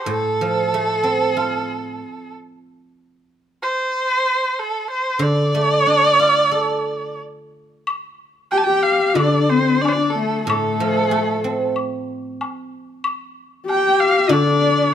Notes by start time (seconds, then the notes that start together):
0.06 A2 A4
0.41 F3
0.74 A3
1.04 C4
1.37 F4
3.63 C5
4.59 A4
4.90 C5
5.19 D3 D5
5.55 A3
5.87 D4
6.19 F4
6.52 A4
7.87 high woodblock
8.51 G4 G5, low woodblock
8.57 A5
8.64 G4 G5
8.83 F5
9.15 D3 D4 D5, high woodblock
9.49 C4 C5
9.81 D4 D5, high woodblock, low woodblock
9.88 C5
9.93 D5
9.98 D4
10.10 A4
10.19 A3
10.44 A2 A4
10.49 A3, high woodblock
10.80 F3
11.11 A3, low woodblock
11.44 C4
11.76 high woodblock
12.41 high woodblock, low woodblock
13.04 high woodblock
13.67 G4 G5, low woodblock
14.01 F5
14.29 D3 D4 D5, high woodblock